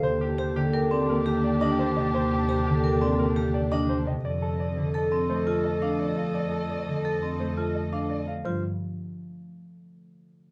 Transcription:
<<
  \new Staff \with { instrumentName = "Grand piano" } { \time 6/4 \key g \minor \tempo 4 = 171 c''8 g'8 c''8 g'8 g''8 d''8 bes'8 g'8 d''8 ees''8 c''8 ees''8 | c''8 g'8 c''8 g'8 g''8 d''8 bes'8 g'8 d''8 ees''8 c''8 ees''8 | d''8 a'8 d''8 r8 a''8 r8 c''8 a'8 ees''8 f''8 d''8 f''8 | d''8 a'8 d''8 r8 a''8 r8 c''8 a'8 ees''8 f''8 d''8 f''8 |
c''8 r1 r4. | }
  \new Staff \with { instrumentName = "Clarinet" } { \time 6/4 \key g \minor g'1.~ | g'1~ g'4. r8 | a'1.~ | a'1~ a'4. r8 |
r1. | }
  \new Staff \with { instrumentName = "String section" } { \time 6/4 \key g \minor <d' g'>1.~ | <d' g'>1~ <d' g'>4. r8 | <a' ees''>1.~ | <a' ees''>1~ <a' ees''>4. r8 |
r1. | }
  \new Staff \with { instrumentName = "Vibraphone" } { \time 6/4 \key g \minor r4 g'8 r8 bes'8 c'8 r8 g'8 r8 d'8 r4 | r4 g'8 r8 bes'8 c'8 r8 g'8 r8 d'8 r4 | r2 a'8 c'8 r8 f'8 r8 d'8 r4 | r2 a'8 c'8 r8 f'8 r8 d'8 r4 |
f'8 r1 r4. | }
  \new Staff \with { instrumentName = "Harp" } { \clef bass \time 6/4 \key g \minor bes4. d4. bes2~ bes8 c8~ | c4. d4. bes2~ bes8 c8 | r4. d4. a2.~ | a4. d4. a2. |
f8 r1 r4. | }
  \new Staff \with { instrumentName = "Double bass section" } { \clef bass \time 6/4 \key g \minor ees,1.~ | ees,1. | f,1.~ | f,1. |
g,8 r1 r4. | }
>>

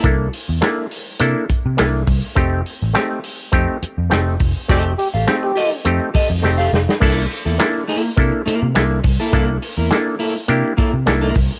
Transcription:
<<
  \new Staff \with { instrumentName = "Clean electric guitar" } { \time 4/4 \key c \mixolydian \tempo 4 = 103 r1 | r1 | <g' a' ees''>16 r8 <g' a' f''>16 r8 <g' a' ees''>16 r8. <g' a' ees''>16 r8 <g' a' f''>16 r8 | <bes e' a'>16 r8 <bes e' a'>16 r8 <bes e' a'>16 r8. <bes e' bes'>16 r4 <bes e' a'>16 |
<bes e' a'>16 r8 <bes e' bes'>16 r8 <bes e' a'>16 r8. <bes e' a'>16 r8 <bes e' bes'>16 r8 | }
  \new Staff \with { instrumentName = "Trombone" } { \time 4/4 \key c \mixolydian r1 | r1 | r8 g'16 r8 g'8. r2 | r1 |
r1 | }
  \new Staff \with { instrumentName = "Clav" } { \time 4/4 \key c \mixolydian <bes d' e' a'>8 r8 <bes d' e' a'>8 r8 <bes d' e' a'>8 r8 <bes d' e' a'>8 r8 | <a c' ees' g'>8 r8 <a c' ees' g'>8 r8 <a c' ees' g'>8 r8 <a c' ees' g'>8 r8 | <a c' ees' g'>8 r8 <a c' ees' g'>8 r8 <a c' ees' g'>8 r8 <a c' ees' g'>8 r8 | <bes d' e' a'>8 r8 <bes d' e' a'>8 r8 <bes d' e' a'>8 r8 <bes d' e' a'>8 r8 |
<bes d' e' a'>8 r8 <bes d' e' a'>8 r8 <bes d' e' g'>8 r8 <bes d' e' a'>8 r8 | }
  \new Staff \with { instrumentName = "Picked electric bass" } { \clef bass \time 4/4 \key c \mixolydian c,8 r16 e,16 r4 c16 r8 c16 c,8 c,16 r16 | f,,8 r16 a,,16 r4 f,16 r8 f,16 f,,8 f,,16 r16 | f,,8 r16 a,,16 r4 f,16 r8 f,16 f,,8 f,,16 r16 | c,8 r16 e,16 r4 c16 r8 c16 c,8 c,16 r16 |
c,8 r16 e,16 r4 c16 r8 c16 c,8 c,16 r16 | }
  \new DrumStaff \with { instrumentName = "Drums" } \drummode { \time 4/4 <hh bd>8 hho8 <hc hh sn>8 hho8 hh8 <hh bd>8 <hc hh sn>8 <hho bd>8 | <hh bd>8 hho8 <hc hh sn>8 hho8 <hh bd>8 hh8 <hc hh sn>8 <hho bd>8 | <hh bd>8 hho8 <hc hh sn>8 hho8 hh8 <hho bd>8 sn8 sn16 sn16 | <cymc bd>8 hho8 <hc hh sn>8 hho8 <hh bd>8 hh8 <hc hh sn>8 <hho bd>8 |
<hh bd>8 hho8 <hc hh sn>8 hho8 hh8 <hh bd>8 <hc hh sn>8 <hho bd>8 | }
>>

